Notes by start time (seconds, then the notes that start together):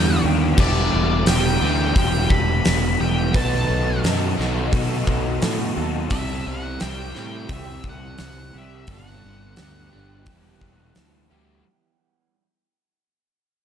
Already playing: E2 G2 D3 G3 B3 D4 G4 A4 G5
0.22 D#2 G3 B3 D4 G4
0.57 E1 E2 B2 E3 G3 B3 E4 A4 D5, kick, crash
0.61 G4
0.94 E1
1.26 E1 E3 G3 B3 G4 G5, snare, open hi-hat
1.61 D2 E3 G3 B3 E4
1.94 E1 E2 B2 E3 G3 B3 G4 G5, kick, open hi-hat
2.30 E1 A4 B5, kick
2.65 E1, snare, open hi-hat
2.99 E1 E3 G3 B3 G4 G5
3.33 B1 B2 D#3 F#3 A3 B3 D#4 F#4 B4 A5, kick, open hi-hat
3.37 A4
3.70 B1
4.02 F#2 F#3 A3 D#4 F#4 A4, snare, open hi-hat
4.37 B1 D#3 F#3 A3 B3 D#4 A4, snare
4.41 B2
4.72 B2 F#3 A3 D#4 F#4 A4, kick, open hi-hat
5.06 B1 B4, kick
5.42 A2, snare, open hi-hat
5.75 D#2 A3 D#4 F#4 A4
6.10 C2 C3 E3 G3 E4 G4 A4 E5, kick, open hi-hat
6.14 C4 E4
6.47 C2 F#5
6.79 C2 E3 G3 E4 G4 G5, snare, open hi-hat
6.83 G4
7.14 A2 C3 G3 C4 E4, snare
7.19 G5
7.49 C2 C3 E3 G3 E4 G4 E5, kick, open hi-hat
7.53 G4
7.84 C2 A4, kick
7.89 F#5
8.18 C2, snare, open hi-hat
8.54 C2 G3 E4 G4
8.58 E5
8.87 G1 G2 D3 G3 B3 D4 A4, kick, open hi-hat
8.91 D4 G4 F#5
9.25 G1
9.56 D2 G3 B3 D4 G4, snare, open hi-hat
9.61 G4
9.90 D3 G3 B3 D4
9.94 G1 G2
10.25 E1 E2 B2 E3 G3 B3 G4, kick, open hi-hat
10.29 B3 E4
10.61 E1 A4, kick
10.95 D2, snare, open hi-hat
11.29 D2 E3 G3 B3 E4 G4